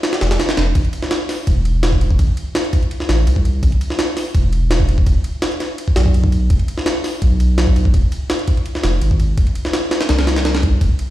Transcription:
0.03 snare, ride
0.13 snare, ride
0.21 sub bass F1, snare, ride
0.31 snare, ride
0.40 snare, ride
0.49 snare, ride
0.57 sub bass F1, snare, ride
0.75 sub bass A1, kick, ride
0.85 ride
0.93 ride
1.03 snare
1.11 snare, ride
1.29 snare, open hi-hat
1.47 sub bass E1, kick, ride
1.65 ride
1.83 snare, ride
1.93 kick
2.01 ride
2.11 kick
2.19 sub bass A1, kick, ride
2.37 ride
2.55 snare, ride
2.65 ride
2.73 kick, ride
2.83 ride
2.91 ride
3.00 snare
3.09 sub bass A1, snare, ride
3.27 sub bass C2, ride
3.36 kick
3.45 ride
3.63 sub bass A1, kick, ride
3.72 ride
3.81 ride
3.90 snare
3.99 snare, ride
4.17 snare, open hi-hat
4.35 sub bass E1, kick, ride
4.53 ride
4.71 snare, ride
4.80 kick
4.89 ride
4.98 kick
5.06 sub bass E1, kick, ride
5.24 ride
5.42 snare, ride
5.52 ride
5.60 snare, ride
5.78 ride
5.88 kick
5.96 sub bass B1, snare, ride
6.06 kick
6.14 ride
6.24 kick
6.32 ride
6.50 sub bass E1, kick, ride
6.59 ride
6.68 ride
6.78 snare
6.86 snare, ride
7.04 snare, open hi-hat
7.22 sub bass B1, kick, ride
7.40 ride
7.58 snare, ride
7.67 kick
7.76 ride
7.85 kick
7.94 sub bass E1, kick, ride
8.12 ride
8.30 snare, ride
8.39 ride
8.48 kick, ride
8.57 ride
8.66 ride
8.75 snare
8.84 sub bass F1, snare, ride
9.01 sub bass G#1, ride
9.11 kick
9.20 ride
9.37 sub bass F1, kick, ride
9.47 ride
9.55 ride
9.65 snare
9.73 snare, ride
9.91 snare, ride
10.01 snare, ride
10.09 sub bass C2, snare, ride
10.19 snare, ride
10.27 snare, ride
10.36 snare, ride
10.45 snare, ride
10.55 snare, ride
10.63 kick, ride
10.81 sub bass F1, kick, ride
10.99 ride

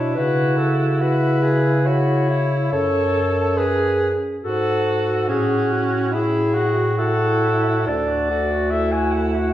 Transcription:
Already playing: bass clarinet B2, alto saxophone D4, tenor saxophone E4, clarinet C#5
0.15 bass clarinet C#3, alto saxophone E4, tenor saxophone F#4, clarinet B4
0.57 clarinet A4
1.01 tenor saxophone E4, alto saxophone F#4, clarinet B4
1.43 alto saxophone G#4
1.85 tenor saxophone E4, alto saxophone F#4, clarinet C#5
2.29 alto saxophone E4
2.72 bass clarinet F#2, tenor saxophone A4, alto saxophone A4, clarinet C#5
3.57 tenor saxophone G#4, alto saxophone G#4, clarinet B4
4.43 bass clarinet G#2, alto saxophone F#4, tenor saxophone F#4, clarinet A4
5.28 bass clarinet A2, alto saxophone C#4, tenor saxophone F#4, clarinet G#4
5.72 clarinet F#4
6.12 tenor saxophone E4, alto saxophone E4, clarinet G#4
6.54 tenor saxophone F#4, alto saxophone F#4
6.97 alto saxophone E4, tenor saxophone F#4, clarinet A4
7.86 bass clarinet D2, alto saxophone D4, tenor saxophone A4, clarinet D5
8.08 tenor saxophone F#4
8.29 alto saxophone F#4, tenor saxophone A4
8.51 tenor saxophone F#4
8.70 alto saxophone E4, tenor saxophone A4, clarinet E5
8.92 tenor saxophone F#4, clarinet G#5
9.12 tenor saxophone A4, clarinet F#5
9.35 tenor saxophone F#4

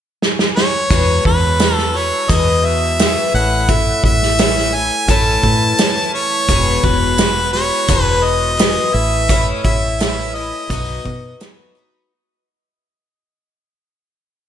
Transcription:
0.22 snare
0.39 snare
0.56 harmonica C#5, snare
0.90 twelve-string acoustic guitar E2 B2 E3 G#3 B3 F#4, fingered electric bass E2, kick, closed hi-hat
1.25 fingered electric bass E2, harmonica B4, kick
1.59 twelve-string acoustic guitar E3 G#3 B3 F#4, snare, closed hi-hat
1.75 harmonica A4, snare
1.94 twelve-string acoustic guitar E3 G#3 B3 F#4, harmonica C#5
2.29 twelve-string acoustic guitar E2 B2 E3 G#3 B3 F#4, fingered electric bass E2, harmonica D#5, kick, closed hi-hat
2.66 harmonica E5
2.98 twelve-string acoustic guitar E3 G#3 B3 F#4, snare, closed hi-hat
3.34 fingered electric bass A1, twelve-string acoustic guitar A2 E3 A3 C#4 E4, harmonica F#5
3.68 harmonica E5, kick, closed hi-hat
4.03 fingered electric bass A1, harmonica E5, kick
4.22 snare
4.38 twelve-string acoustic guitar E3 A3 C#4 E4, snare, closed hi-hat
4.57 snare
4.73 twelve-string acoustic guitar A3 C#4 E4, harmonica G#5
5.08 fingered electric bass A1, twelve-string acoustic guitar A2 E3 A3 C#4 E4, harmonica A5, kick, closed hi-hat
5.43 fingered electric bass A2, kick
5.78 twelve-string acoustic guitar E3 A3 C#4 E4, snare, closed hi-hat
6.14 harmonica C#5
6.48 fingered electric bass E1, twelve-string acoustic guitar E2 B2 E3 G#3 B3 F#4, kick, closed hi-hat
6.83 fingered electric bass E1, harmonica B4, kick
7.17 twelve-string acoustic guitar E3 G#3 B3 F#4, snare, closed hi-hat
7.52 twelve-string acoustic guitar E3 G#3 B3 F#4, harmonica C#5, snare
7.88 fingered electric bass E1, twelve-string acoustic guitar E2 B2 E3 G#3 B3 F#4, kick, closed hi-hat
8.03 harmonica B4
8.24 harmonica D#5
8.57 twelve-string acoustic guitar E3 G#3 B3 F#4, snare, closed hi-hat
8.92 fingered electric bass A1, twelve-string acoustic guitar A3 C#4 E4, harmonica E5
9.28 twelve-string acoustic guitar A2 E3 A3 C#4 E4, kick, closed hi-hat
9.64 fingered electric bass A1, harmonica E5, kick
9.99 twelve-string acoustic guitar E3 A3 C#4 E4, snare, closed hi-hat
10.35 twelve-string acoustic guitar A3 C#4 E4, harmonica D#5
10.69 fingered electric bass B1, twelve-string acoustic guitar B2 F#3 B3 D#4 F#4, kick, closed hi-hat
11.05 fingered electric bass B2, kick
11.40 twelve-string acoustic guitar F#3 B3 D#4 F#4, snare, closed hi-hat
11.75 twelve-string acoustic guitar B3 D#4 F#4

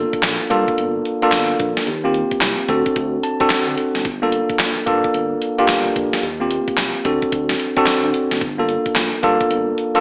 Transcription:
Already playing: tine electric piano A#3 D4 F4 A4
0.13 kick, closed hi-hat
0.23 analog synth bass A#1, snare, clap, closed hi-hat
0.50 analog synth bass G2, tine electric piano A#3 D4 F4 A4, kick, closed hi-hat
0.68 kick, closed hi-hat
0.78 analog synth bass G1, closed hi-hat
1.05 closed hi-hat
1.22 tine electric piano A#3 D4 F4 A4, closed hi-hat
1.32 analog synth bass G1, snare, clap, closed hi-hat
1.60 analog synth bass A#1, kick, closed hi-hat
1.77 snare, closed hi-hat
1.87 analog synth bass D#2, closed hi-hat
2.04 tine electric piano A#3 C4 F4 G4
2.14 closed hi-hat
2.31 kick, closed hi-hat
2.41 analog synth bass C2, snare, clap, closed hi-hat
2.68 analog synth bass D2, tine electric piano C4 D4 F#4 A4, kick, closed hi-hat
2.86 kick, closed hi-hat
2.96 analog synth bass D2, kick, closed hi-hat
3.23 tine electric piano A5, closed hi-hat
3.40 tine electric piano C4 D4 F#4 A4, kick, closed hi-hat
3.50 snare, clap, closed hi-hat
3.68 analog synth bass D3
3.78 closed hi-hat
3.95 analog synth bass F#1, snare, closed hi-hat
4.05 analog synth bass G1, kick, closed hi-hat
4.22 tine electric piano A#3 D4 F4 A4
4.32 closed hi-hat
4.49 kick, closed hi-hat
4.59 analog synth bass A#1, snare, clap, closed hi-hat
4.86 analog synth bass G2, tine electric piano A#3 D4 F4 A4, kick, closed hi-hat
5.04 kick, closed hi-hat
5.14 analog synth bass G1, closed hi-hat
5.42 closed hi-hat
5.58 tine electric piano A#3 D4 F4 G4, closed hi-hat
5.68 analog synth bass G1, snare, clap, closed hi-hat
5.96 analog synth bass A#1, kick, closed hi-hat
6.13 snare, closed hi-hat
6.23 analog synth bass D#2, closed hi-hat
6.40 tine electric piano A#3 C4 F4 G4
6.51 closed hi-hat
6.68 kick, closed hi-hat
6.77 analog synth bass C2, snare, clap, closed hi-hat
7.05 analog synth bass D2, tine electric piano C4 D4 F#4 A4, kick, closed hi-hat
7.22 kick, closed hi-hat
7.32 analog synth bass D2, kick, closed hi-hat
7.49 snare
7.60 closed hi-hat
7.77 tine electric piano C4 D4 F#4 A4, kick, closed hi-hat
7.86 snare, clap, closed hi-hat
8.04 analog synth bass D3
8.14 closed hi-hat
8.31 analog synth bass F#1, snare, closed hi-hat
8.41 analog synth bass G1, kick, closed hi-hat
8.58 tine electric piano A#3 D4 F4 A4
8.69 closed hi-hat
8.86 kick, closed hi-hat
8.95 analog synth bass A#1, snare, clap, closed hi-hat
9.23 analog synth bass G2, tine electric piano A#3 D4 F4 A4, kick, closed hi-hat
9.41 kick, closed hi-hat
9.50 analog synth bass G1, closed hi-hat
9.78 closed hi-hat
9.95 tine electric piano A#3 D4 F4 A4, closed hi-hat

